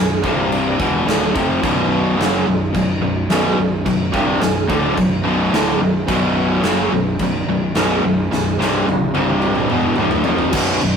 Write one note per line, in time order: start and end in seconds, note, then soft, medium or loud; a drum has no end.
0.00 0.22 B0 medium
0.00 0.18 B1 medium
0.00 0.18 F#2 medium
0.24 0.76 C1 medium
0.24 0.79 C2 medium
0.24 0.80 G2 loud
0.24 0.80 C3 loud
0.24 kick loud
0.52 crash medium
0.79 1.05 E1 medium
0.79 1.06 E2 medium
0.79 1.07 B2 medium
0.79 1.07 E3 medium
0.79 kick loud
1.06 1.33 D1 loud
1.06 1.33 D2 medium
1.06 1.34 A2 loud
1.06 1.34 D3 loud
1.06 snare loud
1.06 crash medium
1.34 1.61 F1 loud
1.34 1.62 F2 medium
1.34 1.62 C3 loud
1.34 1.62 F3 loud
1.34 kick loud
1.63 2.15 B0 medium
1.63 2.16 B1 medium
1.63 2.16 F#2 loud
1.63 2.18 B2 loud
1.63 kick loud
1.63 crash medium
2.17 2.44 F#1 loud
2.17 2.45 F#2 loud
2.17 2.45 C#3 loud
2.17 2.46 F#3 loud
2.17 crash medium
2.21 snare loud
2.46 2.72 B0 medium
2.46 2.69 B1 medium
2.46 2.69 F#2 medium
2.73 3.01 B0 medium
2.73 2.96 B1 medium
2.73 2.97 F#2 medium
2.73 kick medium
2.73 crash medium
3.01 3.28 B0 medium
3.01 3.24 B1 medium
3.01 3.25 F#2 medium
3.30 3.57 B0 loud
3.30 3.57 B1 loud
3.30 3.57 F#2 loud
3.30 3.58 B2 loud
3.30 snare loud
3.30 crash medium
3.57 3.84 B0 medium
3.57 3.80 B1 medium
3.57 3.81 F#2 medium
3.85 4.12 B0 medium
3.85 4.08 B1 medium
3.85 4.09 F#2 medium
3.85 kick loud
3.85 crash medium
4.12 4.40 C1 loud
4.12 4.40 C2 medium
4.12 4.41 G2 loud
4.12 4.41 C3 loud
4.12 kick loud
4.41 4.67 B0 medium
4.41 4.64 B1 medium
4.41 4.64 F#2 medium
4.41 snare loud
4.41 crash medium
4.68 4.95 D1 medium
4.68 4.96 D2 medium
4.68 4.96 A2 loud
4.68 4.97 D3 loud
4.68 kick loud
4.97 5.23 B0 medium
4.97 5.20 B1 medium
4.97 5.20 F#2 medium
4.97 kick medium
4.97 crash medium
5.23 5.50 B0 loud
5.23 5.52 B1 medium
5.23 5.52 F#2 loud
5.23 5.52 B2 loud
5.51 5.78 D1 loud
5.51 5.80 D2 loud
5.51 5.80 A2 loud
5.51 5.80 D3 loud
5.51 snare loud
5.51 crash medium
5.79 6.06 B0 medium
5.79 6.03 B1 medium
5.79 6.04 F#2 medium
6.08 6.60 B0 loud
6.08 6.62 B1 loud
6.08 6.62 F#2 loud
6.08 6.63 B2 loud
6.08 kick loud
6.08 crash medium
6.62 6.89 F#1 medium
6.62 6.91 F#2 medium
6.62 6.91 C#3 medium
6.62 6.91 F#3 loud
6.62 snare loud
6.62 crash medium
6.91 7.17 B0 medium
6.91 7.14 B1 medium
6.91 7.15 F#2 medium
7.19 7.45 B0 medium
7.19 7.43 B1 medium
7.19 7.43 F#2 medium
7.19 kick medium
7.19 crash medium
7.47 7.73 B0 medium
7.47 7.71 B1 medium
7.47 7.71 F#2 medium
7.75 8.01 B0 loud
7.75 8.03 B1 loud
7.75 8.03 F#2 loud
7.75 8.03 B2 loud
7.75 snare loud
7.75 crash medium
8.03 8.29 B0 medium
8.03 8.27 B1 medium
8.03 8.27 F#2 medium
8.31 8.57 B0 medium
8.31 8.54 B1 medium
8.31 8.55 F#2 medium
8.31 snare medium
8.59 8.85 C1 loud
8.59 8.86 C2 loud
8.59 8.86 G2 loud
8.59 8.86 C3 loud
8.59 snare medium
8.87 9.13 B0 medium
8.87 9.10 B1 medium
8.87 9.10 F#2 medium
8.87 high tom medium
9.14 9.66 C1 medium
9.14 9.69 C2 medium
9.14 9.69 G2 loud
9.14 9.70 C3 medium
9.14 high tom medium
9.42 mid tom medium
9.55 mid tom medium
9.70 9.96 E1 medium
9.70 9.97 E2 medium
9.70 9.98 B2 medium
9.70 9.98 E3 medium
9.70 mid tom medium
9.81 mid tom medium
9.96 10.23 D1 medium
9.96 10.25 D2 loud
9.96 10.25 A2 loud
9.96 mid tom loud
10.00 10.26 D3 loud
10.11 floor tom medium
10.24 10.51 F1 loud
10.24 10.52 F2 loud
10.24 10.53 C3 loud
10.24 10.53 F3 loud
10.24 floor tom loud
10.38 floor tom medium
10.53 10.79 B0 medium
10.53 10.80 B1 loud
10.53 10.80 F#2 medium
10.53 10.81 B2 loud
10.53 kick loud
10.53 crash loud
10.53 crash medium
10.81 10.97 B0 medium
10.81 10.97 B1 medium
10.81 10.97 F#2 medium
10.81 crash medium